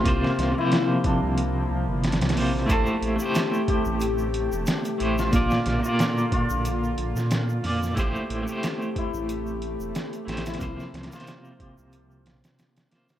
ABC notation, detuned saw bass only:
X:1
M:4/4
L:1/16
Q:"Swing 16ths" 1/4=91
K:Aphr
V:1 name="Detuned saw bass" clef=bass
C,, z C,, z4 C,,3 C,, G,,,2 C,, B,,,2 | A,,, z A,,, z4 A,,,4 E,,, z2 A,,,2 | B,,, z B,,, z4 B,,,3 B,,, B,,3 F,,2 | A,,, z A,,, z4 A,,,4 E,,, z2 A,,,2 |
C,, z C,, z4 C,,3 B,,, z4 z |]